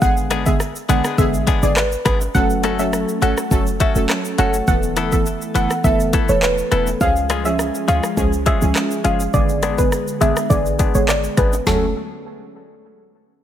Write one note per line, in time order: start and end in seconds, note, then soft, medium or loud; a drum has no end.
0.02 0.72 G#1 loud
0.02 0.43 D3 loud
0.02 0.43 G#3 medium
0.02 0.43 B3 medium
0.02 0.43 G#4 loud
0.02 0.11 F#5 loud
0.02 kick loud
0.02 shaker medium
0.17 shaker medium
0.17 shaker soft
0.31 0.48 G#3 medium
0.31 0.48 B3 medium
0.31 0.48 D4 medium
0.31 0.48 G#4 loud
0.31 cross-stick loud
0.31 closed hi-hat medium
0.31 shaker medium
0.31 shaker soft
0.46 0.59 D3 medium
0.46 0.59 G#3 medium
0.46 0.59 B3 medium
0.46 0.59 G#4 medium
0.46 0.54 E5 medium
0.46 kick medium
0.46 shaker medium
0.60 cross-stick medium
0.60 shaker medium
0.76 shaker medium
0.89 1.01 A1 loud
0.89 1.03 D3 medium
0.89 1.04 G#3 medium
0.89 1.04 B3 medium
0.89 1.04 D4 medium
0.89 1.04 G#4 medium
0.89 1.03 G#4 loud
0.89 0.99 F#5 medium
0.89 closed hi-hat medium
0.89 shaker medium
1.04 1.17 G#3 medium
1.04 1.17 B3 medium
1.04 1.17 D4 medium
1.04 1.16 G#4 medium
1.04 cross-stick loud
1.04 shaker medium
1.18 1.53 A1 medium
1.18 1.59 D3 medium
1.18 1.59 G#3 medium
1.18 1.59 B3 medium
1.18 1.59 G#4 loud
1.18 1.28 E5 medium
1.18 kick loud
1.18 shaker medium
1.34 shaker medium
1.47 1.64 G#3 medium
1.47 1.65 B3 loud
1.47 1.65 D4 medium
1.47 1.65 G#4 loud
1.47 kick loud
1.47 closed hi-hat medium
1.47 shaker medium
1.63 1.96 G#1 medium
1.63 1.75 D3 medium
1.63 1.75 G#3 medium
1.63 1.76 B3 medium
1.63 1.76 G#4 medium
1.63 1.71 D5 medium
1.63 shaker medium
1.76 1.86 B4 medium
1.76 cross-stick loud
1.76 clap loud
1.76 shaker medium
1.92 shaker medium
1.92 shaker soft
2.05 2.28 G#1 medium
2.05 2.23 G#3 medium
2.05 2.21 B3 loud
2.05 2.20 D4 medium
2.05 2.20 G#4 loud
2.05 2.15 B4 medium
2.05 kick medium
2.05 cross-stick medium
2.05 closed hi-hat medium
2.05 high timbale medium
2.05 shaker soft
2.05 shaker medium
2.21 muted clean electric guitar stroke soft
2.21 high timbale medium
2.21 shaker medium
2.34 3.05 F#1 loud
2.34 2.75 F#3 medium
2.34 4.66 F#3 medium
2.34 2.76 A3 medium
2.34 6.97 A3 medium
2.34 2.76 C#4 medium
2.34 4.66 C#4 medium
2.34 6.97 A4 medium
2.34 2.76 A4 loud
2.34 2.44 F#5 loud
2.34 kick loud
2.34 shaker medium
2.50 shaker medium
2.50 shaker soft
2.64 2.81 A3 medium
2.64 2.81 C#4 medium
2.64 2.81 F#4 medium
2.64 2.81 A4 medium
2.64 cross-stick medium
2.64 closed hi-hat medium
2.64 shaker medium
2.64 shaker soft
2.79 3.19 F#3 medium
2.79 3.19 A3 medium
2.79 3.19 C#4 medium
2.79 3.19 A4 medium
2.79 2.88 E5 medium
2.79 shaker medium
2.93 cross-stick medium
2.93 shaker medium
3.08 shaker soft
3.08 shaker medium
3.22 3.34 G#1 medium
3.22 3.49 F#3 medium
3.22 3.49 A3 medium
3.22 3.39 A3 medium
3.22 3.49 C#4 medium
3.22 3.39 C#4 medium
3.22 3.40 F#4 medium
3.22 3.49 A4 medium
3.22 3.40 A4 medium
3.22 3.31 F#5 medium
3.22 closed hi-hat medium
3.22 shaker medium
3.37 cross-stick medium
3.37 shaker medium
3.51 3.86 F#1 loud
3.51 3.65 F#3 loud
3.51 3.65 A3 medium
3.51 3.66 C#4 medium
3.51 3.66 A4 loud
3.51 kick loud
3.51 shaker medium
3.66 shaker medium
3.66 shaker soft
3.80 3.97 A3 medium
3.80 3.98 C#4 medium
3.80 3.98 F#4 medium
3.80 3.98 A4 loud
3.80 3.90 E5 medium
3.80 kick loud
3.80 closed hi-hat medium
3.80 shaker medium
3.95 4.06 F#1 medium
3.95 4.35 F#3 medium
3.95 4.35 A3 medium
3.95 4.35 C#4 medium
3.95 4.36 A4 medium
3.95 shaker medium
4.09 cross-stick loud
4.09 clap loud
4.09 shaker medium
4.25 shaker medium
4.25 shaker soft
4.38 4.61 F#1 medium
4.38 4.65 F#3 medium
4.38 4.56 A3 medium
4.38 4.66 A3 medium
4.38 4.66 C#4 medium
4.38 4.56 C#4 medium
4.38 4.56 F#4 medium
4.38 4.66 A4 medium
4.38 4.56 A4 loud
4.38 4.48 F#5 medium
4.38 closed hi-hat medium
4.38 shaker medium
4.54 shaker medium
4.67 5.38 E1 loud
4.67 5.08 E3 medium
4.67 6.98 E3 medium
4.67 5.09 A3 medium
4.67 6.98 B3 medium
4.67 5.09 B3 medium
4.67 5.09 A4 loud
4.67 4.77 F#5 loud
4.67 kick loud
4.67 shaker medium
4.83 shaker medium
4.83 shaker soft
4.96 5.14 E3 medium
4.96 5.14 B3 medium
4.96 5.14 E4 medium
4.96 5.14 A4 medium
4.96 cross-stick medium
4.96 closed hi-hat medium
4.96 shaker soft
4.96 shaker medium
5.12 5.25 E3 medium
5.12 5.25 A3 medium
5.12 5.25 B3 medium
5.12 5.25 A4 medium
5.12 5.21 E5 medium
5.12 kick medium
5.12 shaker medium
5.26 shaker medium
5.41 shaker soft
5.41 shaker medium
5.55 5.67 F#1 medium
5.55 5.69 E3 medium
5.55 5.72 E3 medium
5.55 5.69 A3 medium
5.55 5.69 B3 medium
5.55 5.72 B3 medium
5.55 5.72 E4 loud
5.55 5.70 A4 medium
5.55 5.73 A4 loud
5.55 5.65 F#5 medium
5.55 closed hi-hat medium
5.55 shaker medium
5.70 cross-stick medium
5.70 shaker medium
5.84 6.19 F#1 loud
5.84 6.25 E3 medium
5.84 6.25 A3 medium
5.84 6.25 B3 medium
5.84 6.25 A4 loud
5.84 5.94 E5 medium
5.84 kick loud
5.84 high timbale soft
5.84 shaker medium
6.00 shaker medium
6.13 6.30 E3 medium
6.13 6.31 B3 medium
6.13 6.31 E4 loud
6.13 6.31 A4 medium
6.13 kick loud
6.13 closed hi-hat medium
6.13 shaker medium
6.28 6.62 E1 medium
6.28 6.41 E3 medium
6.28 6.41 A3 medium
6.28 6.42 B3 medium
6.28 6.42 A4 medium
6.28 6.37 C#5 medium
6.28 shaker medium
6.43 6.52 B4 medium
6.43 clap loud
6.43 shaker medium
6.58 shaker soft
6.58 shaker medium
6.71 6.95 E1 loud
6.71 6.89 E3 medium
6.71 6.89 B3 medium
6.71 6.89 E4 medium
6.71 6.89 A4 medium
6.71 6.81 B4 medium
6.71 cross-stick medium
6.71 closed hi-hat medium
6.71 high timbale medium
6.71 shaker medium
6.87 high timbale medium
6.87 shaker medium
7.00 7.71 C#2 loud
7.00 7.42 F3 loud
7.00 9.32 F3 medium
7.00 7.42 G#3 medium
7.00 9.32 G#3 medium
7.00 7.42 C#4 medium
7.00 9.32 C#4 medium
7.00 11.63 G#4 medium
7.00 7.42 G#4 loud
7.00 7.10 F5 loud
7.00 kick loud
7.00 shaker medium
7.16 shaker medium
7.16 shaker soft
7.30 7.47 G#3 medium
7.30 7.47 C#4 medium
7.30 7.47 F4 medium
7.30 7.47 G#4 medium
7.30 cross-stick medium
7.30 closed hi-hat medium
7.30 shaker medium
7.30 shaker soft
7.45 7.85 F3 medium
7.45 7.85 G#3 medium
7.45 7.85 C#4 medium
7.45 7.85 G#4 medium
7.45 7.54 E5 medium
7.45 shaker medium
7.59 cross-stick medium
7.59 shaker medium
7.75 shaker medium
7.88 8.00 D2 medium
7.88 8.15 F3 medium
7.88 8.05 G#3 medium
7.88 8.15 G#3 medium
7.88 8.15 C#4 medium
7.88 8.05 C#4 medium
7.88 8.05 F4 medium
7.88 8.15 G#4 medium
7.88 8.06 G#4 medium
7.88 7.98 F5 medium
7.88 closed hi-hat medium
7.88 shaker medium
8.04 cross-stick medium
8.04 shaker medium
8.17 8.52 C#2 loud
8.17 8.31 F3 medium
8.17 8.32 G#3 medium
8.17 8.32 C#4 medium
8.17 8.32 G#4 loud
8.17 kick loud
8.17 shaker medium
8.33 shaker medium
8.33 shaker soft
8.46 8.63 G#3 medium
8.46 8.64 C#4 medium
8.46 8.64 F4 medium
8.46 8.64 G#4 loud
8.46 8.56 E5 medium
8.46 kick loud
8.46 closed hi-hat medium
8.46 shaker medium
8.62 8.73 C#2 medium
8.62 9.01 F3 medium
8.62 9.01 G#3 medium
8.62 9.01 C#4 medium
8.62 9.02 G#4 medium
8.62 shaker medium
8.76 cross-stick medium
8.76 clap loud
8.76 shaker medium
8.91 shaker soft
9.04 9.27 F#1 medium
9.04 9.31 F3 medium
9.04 9.22 G#3 medium
9.04 9.32 G#3 medium
9.04 9.32 C#4 medium
9.04 9.22 C#4 medium
9.04 9.22 F4 loud
9.04 9.32 G#4 medium
9.04 9.22 G#4 loud
9.04 9.14 F5 medium
9.04 closed hi-hat medium
9.04 shaker medium
9.20 shaker medium
9.34 10.04 G#1 loud
9.34 9.75 D3 loud
9.34 11.65 D3 medium
9.34 9.75 G#3 medium
9.34 11.65 G#3 medium
9.34 9.75 B3 medium
9.34 11.65 B3 medium
9.34 9.75 G#4 loud
9.34 9.43 D5 loud
9.34 kick loud
9.34 shaker medium
9.49 shaker medium
9.49 shaker soft
9.63 9.80 G#3 medium
9.63 9.80 B3 medium
9.63 9.80 D4 medium
9.63 9.80 G#4 medium
9.63 cross-stick medium
9.63 closed hi-hat medium
9.63 shaker medium
9.63 shaker soft
9.78 9.91 D3 medium
9.78 9.91 G#3 medium
9.78 9.91 B3 medium
9.78 9.91 G#4 medium
9.78 9.87 B4 medium
9.78 kick medium
9.78 shaker medium
9.92 cross-stick medium
9.92 shaker medium
10.08 shaker soft
10.08 shaker medium
10.21 10.33 A1 medium
10.21 10.35 D3 medium
10.21 10.38 G#3 medium
10.21 10.35 G#3 medium
10.21 10.38 B3 loud
10.21 10.36 B3 medium
10.21 10.38 D4 medium
10.21 10.36 G#4 medium
10.21 10.39 G#4 loud
10.21 10.30 E5 medium
10.21 closed hi-hat medium
10.21 shaker medium
10.36 cross-stick medium
10.36 shaker medium
10.50 10.85 A1 medium
10.50 10.91 D3 medium
10.50 10.91 G#3 medium
10.50 10.91 B3 medium
10.50 10.91 G#4 loud
10.50 10.59 D5 loud
10.50 kick loud
10.50 shaker medium
10.66 shaker medium
10.66 shaker soft
10.79 10.96 G#3 medium
10.79 10.97 B3 medium
10.79 10.97 D4 loud
10.79 10.97 G#4 medium
10.79 kick loud
10.79 closed hi-hat medium
10.79 shaker medium
10.79 shaker soft
10.95 11.28 G#1 medium
10.95 11.07 D3 medium
10.95 11.07 G#3 medium
10.95 11.08 B3 medium
10.95 11.08 G#4 medium
10.95 11.03 C#5 medium
10.95 shaker medium
11.08 11.18 D5 medium
11.08 cross-stick loud
11.08 clap loud
11.08 shaker medium
11.24 shaker soft
11.24 shaker medium
11.37 11.60 G#1 medium
11.37 11.55 G#3 medium
11.37 11.55 B3 medium
11.37 11.55 D4 medium
11.37 11.55 G#4 loud
11.37 11.47 B4 medium
11.37 kick medium
11.37 cross-stick medium
11.37 closed hi-hat medium
11.37 high timbale medium
11.37 shaker medium
11.37 shaker soft
11.53 high timbale medium
11.53 shaker medium
11.66 11.94 F#1 loud
11.66 11.89 F#3 medium
11.66 11.94 F#3 medium
11.66 11.85 A3 medium
11.66 11.94 A3 medium
11.66 11.89 A3 medium
11.66 11.94 C#4 medium
11.66 11.85 C#4 medium
11.66 11.89 C#4 medium
11.66 11.85 F#4 medium
11.66 11.94 A4 medium
11.66 11.89 A4 loud
11.66 11.86 A4 medium
11.66 snare loud
11.66 floor tom loud
11.66 shaker medium